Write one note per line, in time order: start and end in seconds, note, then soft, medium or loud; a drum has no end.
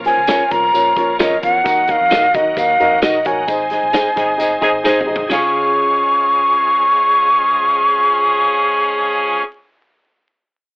0.00 0.13 A#1 loud
0.00 1.64 F3 medium
0.00 3.45 A#3 medium
0.00 1.62 C#4 medium
0.00 1.62 F4 medium
0.05 0.18 C#4 medium
0.05 0.18 F4 medium
0.05 0.18 A#4 medium
0.05 0.18 C5 medium
0.05 0.53 G#5 loud
0.05 snare soft
0.05 closed hi-hat medium
0.17 0.27 C#2 medium
0.27 0.40 C#4 medium
0.27 0.43 C#4 medium
0.27 0.41 F4 medium
0.27 0.43 F4 medium
0.27 0.41 A#4 medium
0.27 0.43 A#4 medium
0.27 0.41 C#5 medium
0.27 0.44 C#5 loud
0.27 snare loud
0.27 closed hi-hat loud
0.27 tambourine medium
0.40 muted fingered electric bass stroke medium
0.50 0.71 C2 medium
0.50 0.63 C#4 medium
0.50 0.63 F4 medium
0.50 0.64 A#4 medium
0.50 0.64 C#5 medium
0.50 1.20 A#5 loud
0.50 kick medium
0.50 closed hi-hat medium
0.73 0.94 A#1 medium
0.73 0.86 C#4 medium
0.73 0.86 F4 medium
0.73 0.87 A#4 medium
0.73 0.87 C#5 medium
0.73 closed hi-hat medium
0.73 tambourine medium
0.96 1.17 A#1 medium
0.96 1.09 C#4 medium
0.96 1.09 F4 medium
0.96 1.10 A#4 medium
0.96 1.10 C#5 loud
0.96 kick medium
0.96 closed hi-hat medium
1.19 1.40 F2 medium
1.19 1.32 C#4 medium
1.19 1.35 C#4 medium
1.19 1.32 F4 medium
1.19 1.35 F4 medium
1.19 1.32 A#4 medium
1.19 1.35 A#4 medium
1.19 1.32 C#5 loud
1.19 1.35 C#5 medium
1.19 1.41 D#5 medium
1.19 snare loud
1.19 closed hi-hat loud
1.19 tambourine medium
1.42 1.63 E2 medium
1.42 1.55 C#4 medium
1.42 1.55 F4 medium
1.42 1.55 A#4 medium
1.42 1.55 C#5 medium
1.42 1.92 F#5 medium
1.42 kick medium
1.42 closed hi-hat medium
1.64 1.96 D#2 loud
1.64 3.47 F#3 medium
1.64 1.77 D#4 medium
1.64 5.28 D#4 medium
1.64 1.78 F#4 medium
1.64 3.47 F#4 medium
1.64 1.78 A#4 medium
1.64 1.78 D#5 medium
1.64 kick loud
1.64 closed hi-hat loud
1.64 tambourine medium
1.88 2.01 D#4 medium
1.88 2.01 F#4 medium
1.88 2.01 A#4 medium
1.88 2.01 D#5 medium
1.88 2.37 F5 loud
1.88 kick medium
1.88 closed hi-hat medium
2.01 2.10 F2 medium
2.10 2.36 A#1 medium
2.10 2.24 D#4 medium
2.10 2.26 D#4 medium
2.10 2.24 F#4 medium
2.10 2.26 F#4 medium
2.10 2.24 A#4 medium
2.10 2.27 A#4 medium
2.10 2.24 D#5 medium
2.10 2.27 D#5 medium
2.10 snare loud
2.10 closed hi-hat medium
2.10 tambourine medium
2.34 2.54 D#3 medium
2.34 2.47 D#4 medium
2.34 2.47 F#4 medium
2.34 2.47 A#4 medium
2.34 2.47 D#5 medium
2.34 2.59 D#5 medium
2.34 kick loud
2.34 closed hi-hat medium
2.56 2.77 D#2 medium
2.56 2.69 D#4 medium
2.56 2.69 F#4 medium
2.56 2.70 A#4 medium
2.56 2.70 D#5 medium
2.56 3.03 F5 medium
2.56 kick medium
2.56 closed hi-hat medium
2.56 tambourine medium
2.80 3.01 F2 medium
2.80 2.92 D#4 medium
2.80 2.93 F#4 medium
2.80 2.93 A#4 medium
2.80 2.93 D#5 loud
2.80 closed hi-hat medium
3.02 3.24 A#1 medium
3.02 3.15 D#4 medium
3.02 3.17 D#4 medium
3.02 3.15 F#4 medium
3.02 3.18 F#4 medium
3.02 3.15 A#4 medium
3.02 3.18 A#4 medium
3.02 3.16 D#5 loud
3.02 3.28 D#5 medium
3.02 3.18 D#5 loud
3.02 snare loud
3.02 closed hi-hat medium
3.02 tambourine medium
3.25 3.46 A1 medium
3.25 3.38 D#4 medium
3.25 3.38 F#4 medium
3.25 3.38 A#4 medium
3.25 3.38 C#5 medium
3.25 4.86 G#5 medium
3.25 kick medium
3.25 closed hi-hat medium
3.47 3.79 G#1 medium
3.47 5.30 G#3 medium
3.47 5.30 C4 medium
3.47 3.61 D#4 medium
3.47 3.61 G#4 medium
3.47 5.29 G#4 medium
3.47 3.61 C5 medium
3.47 3.61 D#5 medium
3.47 kick loud
3.47 closed hi-hat medium
3.47 tambourine medium
3.70 3.84 D#4 medium
3.70 3.84 G#4 medium
3.70 3.84 C5 medium
3.70 3.84 D#5 medium
3.70 snare soft
3.70 closed hi-hat medium
3.83 3.93 A#1 medium
3.92 4.06 D#4 medium
3.92 4.09 D#4 medium
3.92 4.06 G#4 medium
3.92 4.09 G#4 medium
3.92 4.06 C5 medium
3.92 4.09 C5 loud
3.92 4.06 D#5 medium
3.92 4.10 D#5 medium
3.92 snare loud
3.92 closed hi-hat medium
3.92 tambourine medium
4.07 muted fingered electric bass stroke medium
4.16 4.40 G#1 medium
4.16 4.27 C4 medium
4.16 4.29 D#4 medium
4.16 4.27 D#4 medium
4.16 4.29 G#4 medium
4.16 4.26 G#4 medium
4.16 4.29 C5 medium
4.16 4.30 D#5 medium
4.16 kick medium
4.16 snare soft
4.16 closed hi-hat medium
4.38 4.60 F#1 medium
4.38 4.49 C4 medium
4.38 4.51 D#4 medium
4.38 4.49 D#4 medium
4.38 4.51 G#4 medium
4.38 4.49 G#4 medium
4.38 4.52 C5 medium
4.38 4.52 D#5 medium
4.38 closed hi-hat medium
4.38 tambourine medium
4.61 4.83 G#1 medium
4.61 4.70 C4 loud
4.61 4.75 D#4 loud
4.61 4.70 D#4 loud
4.61 4.75 G#4 loud
4.61 4.70 G#4 loud
4.61 4.75 C5 medium
4.61 4.75 D#5 loud
4.61 kick medium
4.61 closed hi-hat medium
4.84 5.29 C4 medium
4.84 4.97 D#4 loud
4.84 5.29 D#4 medium
4.84 5.00 D#4 medium
4.84 4.98 G#4 loud
4.84 5.29 G#4 loud
4.84 5.00 G#4 medium
4.84 4.98 C5 loud
4.84 5.01 C5 medium
4.84 4.98 D#5 loud
4.84 5.01 D#5 medium
4.84 snare medium
4.84 tambourine medium
4.97 muted fingered electric bass stroke soft
4.97 mid tom medium
5.06 5.29 G#1 medium
5.06 5.20 D#4 medium
5.06 5.20 G#4 medium
5.06 5.21 C5 medium
5.06 5.21 D#5 medium
5.16 floor tom loud
5.28 9.43 C#2 medium
5.28 9.42 F3 medium
5.28 9.45 C#4 medium
5.28 9.42 C#4 medium
5.28 9.40 F4 medium
5.28 9.47 F4 medium
5.28 9.44 F4 medium
5.28 9.41 G#4 medium
5.28 9.42 G#4 medium
5.28 9.43 C#5 medium
5.28 kick loud
5.28 snare medium
5.28 ride bell medium
5.28 tambourine medium
5.32 9.44 G#3 medium
5.32 9.44 C#4 medium
5.32 9.44 G#4 medium
5.32 9.49 G#4 medium
5.32 9.50 C#5 medium
5.32 9.44 F5 medium
5.32 9.44 C#6 medium